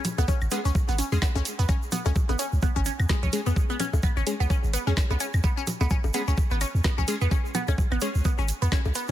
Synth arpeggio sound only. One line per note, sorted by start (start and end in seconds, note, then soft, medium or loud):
0.18 0.25 B3 loud
0.28 0.34 C#4 loud
0.52 0.61 B3 loud
0.65 0.70 C#4 loud
0.89 0.95 B3 loud
0.98 1.04 C#4 loud
1.22 1.31 B3 loud
1.35 1.40 C#4 loud
1.59 1.65 B3 loud
1.69 1.75 C#4 loud
1.92 2.01 B3 loud
2.06 2.10 C#4 loud
2.29 2.36 B3 loud
2.39 2.45 C#4 loud
2.62 2.72 B3 loud
2.76 2.80 C#4 loud
2.86 2.90 C#4 medium
3.09 3.18 G#3 medium
3.23 3.29 C#4 medium
3.46 3.51 B3 loud
3.70 3.76 B3 loud
3.80 3.86 C#4 loud
4.03 4.12 B3 loud
4.17 4.21 C#4 loud
4.40 4.47 B3 loud
4.50 4.56 C#4 loud
4.73 4.83 B3 loud
4.87 4.91 C#4 loud
5.10 5.17 B3 loud
5.20 5.26 C#4 loud
5.44 5.53 B3 loud
5.57 5.62 C#4 loud
5.81 5.87 B3 loud
5.91 5.97 C#4 loud
6.14 6.23 B3 loud
6.28 6.32 C#4 loud
6.51 6.58 B3 loud
6.61 6.67 C#4 loud
6.85 6.94 B3 loud
6.98 7.02 C#4 loud
7.21 7.28 B3 loud
7.31 7.37 C#4 loud
7.55 7.64 B3 loud
7.68 7.73 C#4 loud
7.92 7.98 B3 loud
8.02 8.08 C#4 loud
8.25 8.34 B3 loud
8.39 8.43 C#4 loud
8.62 8.69 B3 loud
8.72 8.78 C#4 loud
8.95 9.04 B3 loud